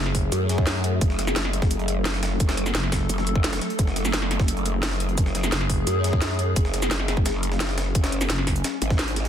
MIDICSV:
0, 0, Header, 1, 5, 480
1, 0, Start_track
1, 0, Key_signature, 3, "minor"
1, 0, Tempo, 346821
1, 1403, Time_signature, 4, 2, 24, 8
1, 12853, End_track
2, 0, Start_track
2, 0, Title_t, "Synth drone"
2, 0, Program_c, 0, 95
2, 0, Note_on_c, 0, 54, 84
2, 0, Note_on_c, 0, 57, 78
2, 0, Note_on_c, 0, 68, 95
2, 1388, Note_off_c, 0, 68, 0
2, 1404, Note_on_c, 0, 69, 97
2, 5229, Note_off_c, 0, 69, 0
2, 5243, Note_on_c, 0, 68, 96
2, 9068, Note_off_c, 0, 68, 0
2, 9084, Note_on_c, 0, 61, 96
2, 12853, Note_off_c, 0, 54, 0
2, 12853, Note_off_c, 0, 57, 0
2, 12853, Note_off_c, 0, 61, 0
2, 12853, End_track
3, 0, Start_track
3, 0, Title_t, "FM bass"
3, 0, Program_c, 1, 39
3, 0, Note_on_c, 1, 30, 100
3, 424, Note_off_c, 1, 30, 0
3, 3804, Note_on_c, 1, 30, 100
3, 4264, Note_off_c, 1, 30, 0
3, 7644, Note_on_c, 1, 30, 97
3, 8104, Note_off_c, 1, 30, 0
3, 11483, Note_on_c, 1, 30, 93
3, 11944, Note_off_c, 1, 30, 0
3, 12853, End_track
4, 0, Start_track
4, 0, Title_t, "Wobble bass"
4, 0, Program_c, 2, 39
4, 443, Note_on_c, 2, 42, 99
4, 1384, Note_off_c, 2, 42, 0
4, 1404, Note_on_c, 2, 30, 95
4, 1865, Note_off_c, 2, 30, 0
4, 1884, Note_on_c, 2, 30, 95
4, 3784, Note_off_c, 2, 30, 0
4, 4283, Note_on_c, 2, 30, 96
4, 4984, Note_off_c, 2, 30, 0
4, 5244, Note_on_c, 2, 30, 99
4, 5704, Note_off_c, 2, 30, 0
4, 5723, Note_on_c, 2, 30, 98
4, 7624, Note_off_c, 2, 30, 0
4, 8124, Note_on_c, 2, 42, 95
4, 9065, Note_off_c, 2, 42, 0
4, 9084, Note_on_c, 2, 30, 99
4, 9544, Note_off_c, 2, 30, 0
4, 9564, Note_on_c, 2, 30, 98
4, 11465, Note_off_c, 2, 30, 0
4, 12204, Note_on_c, 2, 32, 101
4, 12853, Note_off_c, 2, 32, 0
4, 12853, End_track
5, 0, Start_track
5, 0, Title_t, "Drums"
5, 83, Note_on_c, 9, 40, 53
5, 203, Note_on_c, 9, 42, 73
5, 203, Note_on_c, 9, 46, 78
5, 204, Note_on_c, 9, 36, 69
5, 222, Note_off_c, 9, 40, 0
5, 342, Note_off_c, 9, 36, 0
5, 342, Note_off_c, 9, 42, 0
5, 342, Note_off_c, 9, 46, 0
5, 443, Note_on_c, 9, 42, 91
5, 444, Note_off_c, 9, 42, 0
5, 444, Note_on_c, 9, 42, 101
5, 444, Note_on_c, 9, 69, 50
5, 582, Note_off_c, 9, 42, 0
5, 582, Note_off_c, 9, 69, 0
5, 683, Note_on_c, 9, 38, 42
5, 683, Note_on_c, 9, 42, 68
5, 684, Note_off_c, 9, 42, 0
5, 684, Note_on_c, 9, 42, 68
5, 684, Note_on_c, 9, 69, 27
5, 804, Note_on_c, 9, 36, 109
5, 822, Note_off_c, 9, 38, 0
5, 822, Note_off_c, 9, 42, 0
5, 822, Note_off_c, 9, 69, 0
5, 923, Note_on_c, 9, 38, 125
5, 923, Note_on_c, 9, 42, 92
5, 923, Note_on_c, 9, 69, 49
5, 942, Note_off_c, 9, 36, 0
5, 1062, Note_off_c, 9, 38, 0
5, 1062, Note_off_c, 9, 42, 0
5, 1062, Note_off_c, 9, 69, 0
5, 1163, Note_on_c, 9, 42, 69
5, 1164, Note_off_c, 9, 42, 0
5, 1164, Note_on_c, 9, 42, 70
5, 1302, Note_off_c, 9, 42, 0
5, 1403, Note_on_c, 9, 42, 94
5, 1403, Note_on_c, 9, 69, 47
5, 1404, Note_on_c, 9, 36, 123
5, 1524, Note_on_c, 9, 38, 44
5, 1541, Note_off_c, 9, 69, 0
5, 1542, Note_off_c, 9, 36, 0
5, 1542, Note_off_c, 9, 42, 0
5, 1643, Note_off_c, 9, 38, 0
5, 1643, Note_on_c, 9, 38, 49
5, 1643, Note_on_c, 9, 42, 61
5, 1643, Note_on_c, 9, 69, 26
5, 1763, Note_off_c, 9, 69, 0
5, 1763, Note_on_c, 9, 40, 50
5, 1763, Note_on_c, 9, 69, 55
5, 1782, Note_off_c, 9, 38, 0
5, 1782, Note_off_c, 9, 42, 0
5, 1883, Note_off_c, 9, 69, 0
5, 1883, Note_on_c, 9, 38, 127
5, 1883, Note_on_c, 9, 42, 92
5, 1883, Note_on_c, 9, 69, 49
5, 1902, Note_off_c, 9, 40, 0
5, 2003, Note_on_c, 9, 40, 51
5, 2022, Note_off_c, 9, 38, 0
5, 2022, Note_off_c, 9, 42, 0
5, 2022, Note_off_c, 9, 69, 0
5, 2123, Note_on_c, 9, 42, 71
5, 2142, Note_off_c, 9, 40, 0
5, 2243, Note_on_c, 9, 38, 55
5, 2244, Note_on_c, 9, 36, 115
5, 2262, Note_off_c, 9, 42, 0
5, 2363, Note_on_c, 9, 42, 93
5, 2363, Note_on_c, 9, 69, 47
5, 2382, Note_off_c, 9, 36, 0
5, 2382, Note_off_c, 9, 38, 0
5, 2483, Note_off_c, 9, 42, 0
5, 2483, Note_on_c, 9, 42, 44
5, 2502, Note_off_c, 9, 69, 0
5, 2603, Note_off_c, 9, 42, 0
5, 2603, Note_on_c, 9, 42, 70
5, 2603, Note_on_c, 9, 69, 27
5, 2742, Note_off_c, 9, 42, 0
5, 2742, Note_off_c, 9, 69, 0
5, 2843, Note_on_c, 9, 38, 123
5, 2843, Note_on_c, 9, 42, 92
5, 2843, Note_on_c, 9, 69, 46
5, 2963, Note_off_c, 9, 38, 0
5, 2963, Note_on_c, 9, 38, 60
5, 2981, Note_off_c, 9, 69, 0
5, 2982, Note_off_c, 9, 42, 0
5, 3083, Note_off_c, 9, 38, 0
5, 3083, Note_on_c, 9, 38, 106
5, 3083, Note_on_c, 9, 42, 81
5, 3222, Note_off_c, 9, 38, 0
5, 3222, Note_off_c, 9, 42, 0
5, 3323, Note_on_c, 9, 42, 67
5, 3323, Note_on_c, 9, 69, 48
5, 3324, Note_on_c, 9, 36, 125
5, 3443, Note_on_c, 9, 38, 37
5, 3444, Note_off_c, 9, 38, 0
5, 3444, Note_off_c, 9, 42, 0
5, 3444, Note_on_c, 9, 38, 109
5, 3444, Note_on_c, 9, 42, 79
5, 3461, Note_off_c, 9, 69, 0
5, 3462, Note_off_c, 9, 36, 0
5, 3563, Note_off_c, 9, 42, 0
5, 3563, Note_on_c, 9, 42, 64
5, 3563, Note_on_c, 9, 69, 27
5, 3582, Note_off_c, 9, 38, 0
5, 3683, Note_off_c, 9, 69, 0
5, 3683, Note_on_c, 9, 40, 48
5, 3683, Note_on_c, 9, 69, 57
5, 3684, Note_off_c, 9, 42, 0
5, 3684, Note_on_c, 9, 42, 63
5, 3803, Note_off_c, 9, 42, 0
5, 3803, Note_off_c, 9, 69, 0
5, 3803, Note_on_c, 9, 38, 127
5, 3803, Note_on_c, 9, 42, 91
5, 3803, Note_on_c, 9, 69, 52
5, 3821, Note_off_c, 9, 40, 0
5, 3923, Note_on_c, 9, 40, 49
5, 3941, Note_off_c, 9, 38, 0
5, 3941, Note_off_c, 9, 42, 0
5, 3941, Note_off_c, 9, 69, 0
5, 4043, Note_off_c, 9, 40, 0
5, 4043, Note_on_c, 9, 36, 65
5, 4043, Note_on_c, 9, 38, 111
5, 4043, Note_on_c, 9, 40, 47
5, 4043, Note_on_c, 9, 42, 80
5, 4043, Note_on_c, 9, 46, 85
5, 4182, Note_off_c, 9, 36, 0
5, 4182, Note_off_c, 9, 38, 0
5, 4182, Note_off_c, 9, 40, 0
5, 4182, Note_off_c, 9, 42, 0
5, 4182, Note_off_c, 9, 46, 0
5, 4283, Note_on_c, 9, 42, 63
5, 4283, Note_on_c, 9, 69, 49
5, 4404, Note_on_c, 9, 38, 49
5, 4421, Note_off_c, 9, 69, 0
5, 4422, Note_off_c, 9, 42, 0
5, 4523, Note_on_c, 9, 42, 65
5, 4523, Note_on_c, 9, 69, 27
5, 4542, Note_off_c, 9, 38, 0
5, 4643, Note_on_c, 9, 36, 108
5, 4662, Note_off_c, 9, 42, 0
5, 4662, Note_off_c, 9, 69, 0
5, 4763, Note_on_c, 9, 38, 121
5, 4763, Note_on_c, 9, 42, 87
5, 4763, Note_on_c, 9, 69, 46
5, 4782, Note_off_c, 9, 36, 0
5, 4883, Note_off_c, 9, 38, 0
5, 4883, Note_off_c, 9, 42, 0
5, 4883, Note_on_c, 9, 38, 109
5, 4883, Note_on_c, 9, 42, 83
5, 4902, Note_off_c, 9, 69, 0
5, 5003, Note_off_c, 9, 38, 0
5, 5003, Note_off_c, 9, 42, 0
5, 5003, Note_on_c, 9, 38, 52
5, 5003, Note_on_c, 9, 42, 63
5, 5123, Note_off_c, 9, 42, 0
5, 5123, Note_on_c, 9, 42, 63
5, 5142, Note_off_c, 9, 38, 0
5, 5243, Note_off_c, 9, 42, 0
5, 5243, Note_on_c, 9, 42, 88
5, 5243, Note_on_c, 9, 69, 49
5, 5244, Note_on_c, 9, 36, 118
5, 5363, Note_on_c, 9, 38, 46
5, 5382, Note_off_c, 9, 36, 0
5, 5382, Note_off_c, 9, 42, 0
5, 5382, Note_off_c, 9, 69, 0
5, 5483, Note_off_c, 9, 38, 0
5, 5483, Note_on_c, 9, 38, 47
5, 5483, Note_on_c, 9, 42, 69
5, 5483, Note_on_c, 9, 69, 28
5, 5603, Note_off_c, 9, 69, 0
5, 5603, Note_on_c, 9, 40, 46
5, 5603, Note_on_c, 9, 69, 60
5, 5622, Note_off_c, 9, 38, 0
5, 5622, Note_off_c, 9, 42, 0
5, 5723, Note_off_c, 9, 69, 0
5, 5723, Note_on_c, 9, 38, 125
5, 5723, Note_on_c, 9, 42, 93
5, 5723, Note_on_c, 9, 69, 52
5, 5742, Note_off_c, 9, 40, 0
5, 5843, Note_on_c, 9, 40, 46
5, 5862, Note_off_c, 9, 38, 0
5, 5862, Note_off_c, 9, 42, 0
5, 5862, Note_off_c, 9, 69, 0
5, 5963, Note_off_c, 9, 40, 0
5, 5963, Note_on_c, 9, 40, 45
5, 5963, Note_on_c, 9, 42, 63
5, 6083, Note_on_c, 9, 38, 58
5, 6084, Note_on_c, 9, 36, 110
5, 6102, Note_off_c, 9, 40, 0
5, 6102, Note_off_c, 9, 42, 0
5, 6203, Note_on_c, 9, 42, 93
5, 6203, Note_on_c, 9, 69, 51
5, 6222, Note_off_c, 9, 36, 0
5, 6222, Note_off_c, 9, 38, 0
5, 6323, Note_off_c, 9, 42, 0
5, 6323, Note_on_c, 9, 42, 46
5, 6342, Note_off_c, 9, 69, 0
5, 6443, Note_off_c, 9, 42, 0
5, 6443, Note_on_c, 9, 42, 69
5, 6443, Note_on_c, 9, 69, 28
5, 6582, Note_off_c, 9, 42, 0
5, 6582, Note_off_c, 9, 69, 0
5, 6683, Note_on_c, 9, 38, 127
5, 6683, Note_on_c, 9, 42, 92
5, 6683, Note_on_c, 9, 69, 47
5, 6803, Note_off_c, 9, 38, 0
5, 6803, Note_on_c, 9, 38, 60
5, 6822, Note_off_c, 9, 42, 0
5, 6822, Note_off_c, 9, 69, 0
5, 6923, Note_on_c, 9, 42, 72
5, 6942, Note_off_c, 9, 38, 0
5, 7043, Note_off_c, 9, 42, 0
5, 7043, Note_on_c, 9, 42, 45
5, 7163, Note_off_c, 9, 42, 0
5, 7163, Note_on_c, 9, 42, 96
5, 7163, Note_on_c, 9, 69, 51
5, 7164, Note_on_c, 9, 36, 116
5, 7283, Note_on_c, 9, 38, 47
5, 7302, Note_off_c, 9, 36, 0
5, 7302, Note_off_c, 9, 42, 0
5, 7302, Note_off_c, 9, 69, 0
5, 7403, Note_on_c, 9, 42, 64
5, 7403, Note_on_c, 9, 69, 28
5, 7404, Note_off_c, 9, 38, 0
5, 7404, Note_off_c, 9, 42, 0
5, 7404, Note_on_c, 9, 38, 51
5, 7404, Note_on_c, 9, 42, 69
5, 7523, Note_off_c, 9, 69, 0
5, 7523, Note_on_c, 9, 40, 44
5, 7523, Note_on_c, 9, 69, 60
5, 7542, Note_off_c, 9, 38, 0
5, 7542, Note_off_c, 9, 42, 0
5, 7643, Note_off_c, 9, 69, 0
5, 7643, Note_on_c, 9, 38, 120
5, 7643, Note_on_c, 9, 42, 98
5, 7643, Note_on_c, 9, 69, 56
5, 7644, Note_off_c, 9, 38, 0
5, 7644, Note_off_c, 9, 42, 0
5, 7644, Note_on_c, 9, 38, 115
5, 7644, Note_on_c, 9, 42, 90
5, 7661, Note_off_c, 9, 40, 0
5, 7763, Note_on_c, 9, 40, 47
5, 7782, Note_off_c, 9, 38, 0
5, 7782, Note_off_c, 9, 42, 0
5, 7782, Note_off_c, 9, 69, 0
5, 7883, Note_on_c, 9, 42, 71
5, 7883, Note_on_c, 9, 46, 82
5, 7884, Note_on_c, 9, 36, 64
5, 7901, Note_off_c, 9, 40, 0
5, 8021, Note_off_c, 9, 46, 0
5, 8022, Note_off_c, 9, 36, 0
5, 8022, Note_off_c, 9, 42, 0
5, 8123, Note_on_c, 9, 42, 96
5, 8123, Note_on_c, 9, 69, 56
5, 8124, Note_off_c, 9, 42, 0
5, 8124, Note_on_c, 9, 42, 91
5, 8262, Note_off_c, 9, 42, 0
5, 8262, Note_off_c, 9, 69, 0
5, 8363, Note_on_c, 9, 42, 68
5, 8363, Note_on_c, 9, 69, 29
5, 8364, Note_off_c, 9, 42, 0
5, 8364, Note_on_c, 9, 38, 41
5, 8364, Note_on_c, 9, 42, 73
5, 8484, Note_on_c, 9, 36, 100
5, 8502, Note_off_c, 9, 38, 0
5, 8502, Note_off_c, 9, 42, 0
5, 8502, Note_off_c, 9, 69, 0
5, 8603, Note_on_c, 9, 38, 111
5, 8603, Note_on_c, 9, 42, 92
5, 8603, Note_on_c, 9, 69, 52
5, 8604, Note_off_c, 9, 38, 0
5, 8604, Note_off_c, 9, 42, 0
5, 8604, Note_on_c, 9, 38, 124
5, 8604, Note_on_c, 9, 42, 94
5, 8622, Note_off_c, 9, 36, 0
5, 8741, Note_off_c, 9, 69, 0
5, 8742, Note_off_c, 9, 38, 0
5, 8742, Note_off_c, 9, 42, 0
5, 8843, Note_on_c, 9, 42, 65
5, 8844, Note_off_c, 9, 42, 0
5, 8844, Note_on_c, 9, 42, 69
5, 8982, Note_off_c, 9, 42, 0
5, 9083, Note_on_c, 9, 42, 94
5, 9083, Note_on_c, 9, 69, 52
5, 9084, Note_off_c, 9, 42, 0
5, 9084, Note_on_c, 9, 36, 110
5, 9084, Note_on_c, 9, 42, 94
5, 9204, Note_on_c, 9, 38, 46
5, 9222, Note_off_c, 9, 36, 0
5, 9222, Note_off_c, 9, 42, 0
5, 9222, Note_off_c, 9, 69, 0
5, 9323, Note_off_c, 9, 38, 0
5, 9323, Note_on_c, 9, 38, 48
5, 9323, Note_on_c, 9, 42, 68
5, 9323, Note_on_c, 9, 69, 29
5, 9443, Note_off_c, 9, 69, 0
5, 9443, Note_on_c, 9, 40, 47
5, 9443, Note_on_c, 9, 69, 60
5, 9462, Note_off_c, 9, 38, 0
5, 9462, Note_off_c, 9, 42, 0
5, 9563, Note_off_c, 9, 69, 0
5, 9563, Note_on_c, 9, 38, 119
5, 9563, Note_on_c, 9, 42, 101
5, 9563, Note_on_c, 9, 69, 55
5, 9582, Note_off_c, 9, 40, 0
5, 9683, Note_on_c, 9, 40, 48
5, 9702, Note_off_c, 9, 38, 0
5, 9702, Note_off_c, 9, 42, 0
5, 9702, Note_off_c, 9, 69, 0
5, 9803, Note_off_c, 9, 40, 0
5, 9803, Note_on_c, 9, 40, 48
5, 9803, Note_on_c, 9, 42, 68
5, 9804, Note_off_c, 9, 42, 0
5, 9804, Note_on_c, 9, 38, 45
5, 9804, Note_on_c, 9, 42, 64
5, 9924, Note_on_c, 9, 36, 104
5, 9942, Note_off_c, 9, 38, 0
5, 9942, Note_off_c, 9, 40, 0
5, 9942, Note_off_c, 9, 42, 0
5, 10043, Note_on_c, 9, 42, 99
5, 10043, Note_on_c, 9, 69, 56
5, 10044, Note_off_c, 9, 42, 0
5, 10044, Note_on_c, 9, 38, 108
5, 10044, Note_on_c, 9, 42, 83
5, 10062, Note_off_c, 9, 36, 0
5, 10182, Note_off_c, 9, 38, 0
5, 10182, Note_off_c, 9, 42, 0
5, 10182, Note_off_c, 9, 69, 0
5, 10284, Note_on_c, 9, 42, 70
5, 10284, Note_on_c, 9, 69, 30
5, 10403, Note_on_c, 9, 38, 48
5, 10422, Note_off_c, 9, 42, 0
5, 10422, Note_off_c, 9, 69, 0
5, 10523, Note_off_c, 9, 38, 0
5, 10523, Note_on_c, 9, 38, 115
5, 10523, Note_on_c, 9, 42, 94
5, 10523, Note_on_c, 9, 69, 53
5, 10524, Note_off_c, 9, 38, 0
5, 10524, Note_off_c, 9, 42, 0
5, 10524, Note_on_c, 9, 38, 122
5, 10524, Note_on_c, 9, 42, 97
5, 10644, Note_off_c, 9, 38, 0
5, 10644, Note_on_c, 9, 38, 62
5, 10662, Note_off_c, 9, 42, 0
5, 10662, Note_off_c, 9, 69, 0
5, 10763, Note_off_c, 9, 38, 0
5, 10763, Note_on_c, 9, 38, 108
5, 10763, Note_on_c, 9, 42, 84
5, 10902, Note_off_c, 9, 38, 0
5, 10902, Note_off_c, 9, 42, 0
5, 11003, Note_on_c, 9, 42, 66
5, 11003, Note_on_c, 9, 69, 50
5, 11004, Note_on_c, 9, 36, 118
5, 11123, Note_on_c, 9, 38, 35
5, 11124, Note_off_c, 9, 38, 0
5, 11124, Note_off_c, 9, 42, 0
5, 11124, Note_on_c, 9, 38, 108
5, 11124, Note_on_c, 9, 42, 81
5, 11141, Note_off_c, 9, 69, 0
5, 11142, Note_off_c, 9, 36, 0
5, 11243, Note_off_c, 9, 42, 0
5, 11243, Note_on_c, 9, 42, 72
5, 11243, Note_on_c, 9, 69, 29
5, 11262, Note_off_c, 9, 38, 0
5, 11363, Note_off_c, 9, 42, 0
5, 11363, Note_off_c, 9, 69, 0
5, 11363, Note_on_c, 9, 40, 48
5, 11363, Note_on_c, 9, 42, 66
5, 11363, Note_on_c, 9, 69, 60
5, 11483, Note_off_c, 9, 42, 0
5, 11483, Note_off_c, 9, 69, 0
5, 11483, Note_on_c, 9, 38, 105
5, 11483, Note_on_c, 9, 42, 78
5, 11483, Note_on_c, 9, 69, 54
5, 11501, Note_off_c, 9, 40, 0
5, 11603, Note_on_c, 9, 40, 49
5, 11622, Note_off_c, 9, 38, 0
5, 11622, Note_off_c, 9, 42, 0
5, 11622, Note_off_c, 9, 69, 0
5, 11723, Note_off_c, 9, 40, 0
5, 11723, Note_on_c, 9, 40, 48
5, 11723, Note_on_c, 9, 42, 64
5, 11723, Note_on_c, 9, 46, 75
5, 11724, Note_on_c, 9, 36, 62
5, 11843, Note_on_c, 9, 69, 30
5, 11844, Note_off_c, 9, 42, 0
5, 11844, Note_on_c, 9, 42, 66
5, 11861, Note_off_c, 9, 40, 0
5, 11861, Note_off_c, 9, 46, 0
5, 11862, Note_off_c, 9, 36, 0
5, 11963, Note_off_c, 9, 42, 0
5, 11963, Note_off_c, 9, 69, 0
5, 11963, Note_on_c, 9, 42, 101
5, 11963, Note_on_c, 9, 69, 53
5, 11964, Note_off_c, 9, 42, 0
5, 11964, Note_on_c, 9, 38, 106
5, 11964, Note_on_c, 9, 42, 78
5, 12101, Note_off_c, 9, 69, 0
5, 12102, Note_off_c, 9, 38, 0
5, 12102, Note_off_c, 9, 42, 0
5, 12203, Note_on_c, 9, 42, 74
5, 12203, Note_on_c, 9, 69, 29
5, 12204, Note_off_c, 9, 42, 0
5, 12204, Note_on_c, 9, 42, 82
5, 12324, Note_on_c, 9, 36, 104
5, 12324, Note_on_c, 9, 38, 41
5, 12341, Note_off_c, 9, 69, 0
5, 12342, Note_off_c, 9, 42, 0
5, 12443, Note_off_c, 9, 38, 0
5, 12443, Note_on_c, 9, 38, 116
5, 12443, Note_on_c, 9, 42, 94
5, 12443, Note_on_c, 9, 69, 50
5, 12444, Note_off_c, 9, 38, 0
5, 12444, Note_off_c, 9, 42, 0
5, 12444, Note_on_c, 9, 38, 46
5, 12444, Note_on_c, 9, 42, 65
5, 12462, Note_off_c, 9, 36, 0
5, 12563, Note_off_c, 9, 42, 0
5, 12563, Note_on_c, 9, 42, 86
5, 12581, Note_off_c, 9, 69, 0
5, 12582, Note_off_c, 9, 38, 0
5, 12683, Note_off_c, 9, 42, 0
5, 12683, Note_on_c, 9, 42, 68
5, 12684, Note_on_c, 9, 38, 41
5, 12804, Note_off_c, 9, 38, 0
5, 12804, Note_off_c, 9, 42, 0
5, 12804, Note_on_c, 9, 38, 44
5, 12804, Note_on_c, 9, 42, 63
5, 12853, Note_off_c, 9, 38, 0
5, 12853, Note_off_c, 9, 42, 0
5, 12853, End_track
0, 0, End_of_file